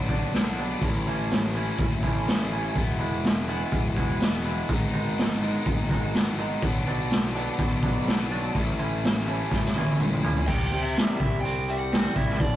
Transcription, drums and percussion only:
0.09 kick medium
0.33 snare medium
0.33 open hi-hat soft
0.82 kick loud
0.82 open hi-hat medium
1.31 snare loud
1.31 open hi-hat medium
1.79 kick loud
1.79 open hi-hat soft
2.03 kick medium
2.27 snare medium
2.27 open hi-hat soft
2.76 kick loud
2.76 open hi-hat soft
3.24 snare loud
3.24 open hi-hat soft
3.72 kick loud
3.72 open hi-hat soft
3.97 kick medium
4.20 snare loud
4.20 open hi-hat soft
4.69 kick loud
4.69 open hi-hat medium
5.18 snare loud
5.18 open hi-hat medium
5.66 kick loud
5.66 open hi-hat medium
5.90 kick medium
6.14 snare loud
6.14 open hi-hat soft
6.62 kick loud
6.62 open hi-hat medium
7.11 snare loud
7.11 open hi-hat medium
7.59 kick loud
7.59 open hi-hat soft
7.83 kick medium
8.07 snare medium
8.07 open hi-hat soft
8.55 kick loud
8.55 open hi-hat medium
9.04 snare loud
9.04 open hi-hat medium
9.52 kick loud
9.52 snare medium
9.65 snare soft
9.76 high tom medium
9.88 high tom soft
10.00 mid tom medium
10.12 mid tom medium
10.24 floor tom medium
10.37 floor tom medium
10.48 kick loud
10.48 crash loud
10.72 open hi-hat soft
10.96 snare loud
10.96 open hi-hat medium
11.20 kick medium
11.20 open hi-hat medium
11.45 open hi-hat medium
11.68 open hi-hat soft
11.92 snare loud
11.92 open hi-hat medium
12.16 kick medium
12.16 open hi-hat medium
12.29 snare soft
12.40 kick loud
12.40 open hi-hat medium

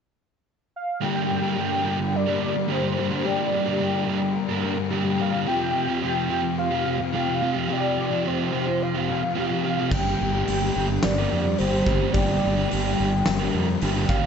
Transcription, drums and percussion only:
9.91 kick loud
9.91 crash medium
10.47 open hi-hat medium
11.03 snare loud
11.03 open hi-hat medium
11.58 open hi-hat medium
11.87 kick medium
11.87 snare soft
12.14 kick loud
12.14 open hi-hat medium
12.71 open hi-hat medium
13.26 snare loud
13.26 open hi-hat medium
13.81 open hi-hat medium
14.09 kick medium
14.09 snare soft

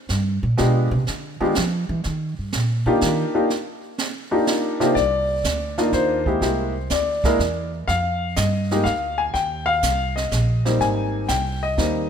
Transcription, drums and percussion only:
0.09 snare soft
0.58 brush sweep soft
0.58 snare soft
1.07 snare soft
1.55 snare medium
2.04 brush sweep soft
2.04 snare soft
2.53 snare medium
3.01 snare soft
3.50 brush sweep medium
3.50 snare soft
3.98 snare medium
4.47 snare medium
4.81 snare soft
4.96 brush sweep soft
4.96 kick soft
4.96 snare soft
5.44 kick soft
5.44 snare medium
5.44 hi-hat pedal soft
5.78 snare soft
5.93 kick soft
5.93 snare soft
6.26 kick soft
6.41 brush sweep soft
6.41 kick soft
6.41 snare soft
6.90 kick soft
6.90 snare medium
6.90 hi-hat pedal medium
7.24 kick medium
7.24 snare soft
7.39 kick soft
7.39 snare soft
7.88 brush sweep soft
7.88 kick soft
7.88 snare soft
8.36 kick soft
8.36 snare medium
8.36 hi-hat pedal medium
8.71 snare soft
8.85 kick soft
8.85 snare soft
9.34 brush sweep soft
9.34 kick soft
9.34 snare soft
9.83 kick soft
9.83 snare medium
9.83 hi-hat pedal medium
10.17 snare soft
10.31 kick soft
10.31 snare medium
10.31 hi-hat pedal medium
10.65 snare soft
10.80 brush sweep soft
10.80 kick soft
10.80 snare soft
11.28 kick soft
11.28 snare medium
11.28 hi-hat pedal medium
11.78 kick soft
11.78 snare soft

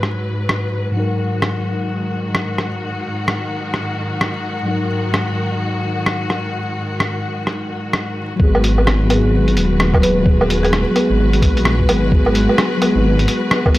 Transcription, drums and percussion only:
0.03 cross-stick medium
0.49 cross-stick loud
1.42 cross-stick medium
2.35 cross-stick medium
2.58 cross-stick medium
3.28 cross-stick medium
3.74 cross-stick medium
4.21 cross-stick medium
5.14 cross-stick loud
6.06 cross-stick medium
6.30 cross-stick medium
7.00 cross-stick loud
7.47 cross-stick medium
7.93 cross-stick medium
8.40 kick loud
8.55 low woodblock medium
8.64 closed hi-hat medium
8.78 low woodblock soft
8.87 cross-stick loud
9.10 closed hi-hat medium
9.10 low woodblock soft
9.48 closed hi-hat soft
9.57 closed hi-hat medium
9.80 cross-stick loud
9.94 kick loud
9.94 low woodblock medium
10.03 closed hi-hat medium
10.26 kick loud
10.41 low woodblock medium
10.50 closed hi-hat medium
10.65 closed hi-hat soft
10.65 low woodblock soft
10.73 cross-stick loud
10.96 closed hi-hat medium
10.96 low woodblock soft
11.33 closed hi-hat soft
11.42 kick loud
11.42 closed hi-hat medium
11.57 closed hi-hat soft
11.65 cross-stick loud
11.80 kick medium
11.89 closed hi-hat medium
11.89 low woodblock medium
12.12 kick loud
12.26 low woodblock medium
12.35 closed hi-hat medium
12.49 low woodblock soft
12.58 cross-stick loud
12.82 closed hi-hat medium
12.82 low woodblock soft
13.19 closed hi-hat soft
13.28 closed hi-hat medium
13.51 cross-stick loud
13.66 kick loud
13.66 low woodblock medium
13.75 closed hi-hat medium

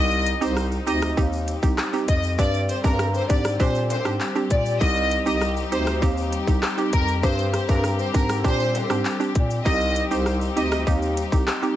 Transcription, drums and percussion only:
0.11 shaker medium
0.11 shaker soft
0.27 closed hi-hat medium
0.27 shaker soft
0.27 shaker medium
0.42 shaker medium
0.57 cross-stick medium
0.57 shaker medium
0.72 shaker medium
0.87 closed hi-hat medium
0.87 shaker medium
0.87 shaker soft
1.02 cross-stick loud
1.02 shaker medium
1.17 kick loud
1.17 shaker medium
1.33 shaker soft
1.33 shaker medium
1.48 closed hi-hat medium
1.48 shaker medium
1.63 kick medium
1.63 shaker medium
1.78 cross-stick medium
1.78 clap medium
1.78 shaker medium
1.93 shaker soft
2.08 kick medium
2.08 closed hi-hat medium
2.08 shaker medium
2.23 shaker medium
2.39 kick loud
2.39 shaker medium
2.54 shaker medium
2.69 closed hi-hat medium
2.69 shaker medium
2.69 shaker soft
2.84 kick medium
2.84 high timbale medium
2.84 shaker medium
2.99 cross-stick loud
2.99 shaker medium
3.14 shaker medium
3.29 kick loud
3.29 closed hi-hat medium
3.29 shaker medium
3.29 shaker soft
3.45 cross-stick loud
3.45 shaker medium
3.60 kick loud
3.60 shaker medium
3.75 shaker medium
3.75 shaker soft
3.90 closed hi-hat medium
3.90 high timbale medium
3.90 shaker medium
4.05 cross-stick loud
4.05 shaker medium
4.20 clap medium
4.20 shaker medium
4.35 shaker soft
4.51 kick loud
4.51 closed hi-hat medium
4.51 shaker medium
4.66 shaker medium
4.81 kick loud
4.81 shaker medium
4.96 shaker soft
4.96 shaker medium
5.11 closed hi-hat medium
5.11 shaker medium
5.11 shaker soft
5.26 shaker medium
5.41 cross-stick medium
5.41 shaker medium
5.57 shaker medium
5.72 closed hi-hat medium
5.72 shaker medium
5.72 shaker soft
5.87 cross-stick medium
5.87 shaker medium
6.02 kick medium
6.02 shaker medium
6.17 shaker soft
6.17 shaker medium
6.33 closed hi-hat medium
6.33 shaker medium
6.47 kick medium
6.47 shaker medium
6.63 cross-stick medium
6.63 clap medium
6.63 shaker medium
6.78 shaker soft
6.93 kick medium
6.93 closed hi-hat medium
6.93 shaker medium
7.08 shaker medium
7.23 kick loud
7.23 shaker medium
7.38 shaker medium
7.54 cross-stick medium
7.54 closed hi-hat medium
7.54 shaker medium
7.69 kick medium
7.69 high timbale medium
7.69 shaker medium
7.84 cross-stick medium
7.84 shaker medium
7.99 shaker medium
8.14 kick loud
8.14 closed hi-hat medium
8.14 shaker medium
8.14 shaker soft
8.29 cross-stick loud
8.29 shaker medium
8.45 kick loud
8.45 shaker medium
8.60 shaker soft
8.60 shaker medium
8.75 closed hi-hat medium
8.75 high timbale medium
8.75 shaker medium
8.90 cross-stick loud
8.90 shaker medium
9.05 clap medium
9.05 shaker medium
9.20 shaker soft
9.35 kick loud
9.35 closed hi-hat medium
9.35 shaker medium
9.51 shaker medium
9.66 kick loud
9.66 shaker medium
9.81 shaker soft
9.81 shaker medium
9.96 closed hi-hat medium
9.96 shaker medium
10.11 shaker medium
10.26 cross-stick medium
10.26 shaker medium
10.41 shaker medium
10.57 closed hi-hat medium
10.57 shaker medium
10.57 shaker soft
10.72 cross-stick loud
10.72 shaker medium
10.87 kick loud
10.87 shaker medium
11.02 shaker soft
11.02 shaker medium
11.17 closed hi-hat medium
11.17 shaker medium
11.32 kick medium
11.32 shaker medium
11.47 cross-stick medium
11.47 clap medium
11.47 shaker medium
11.63 shaker soft

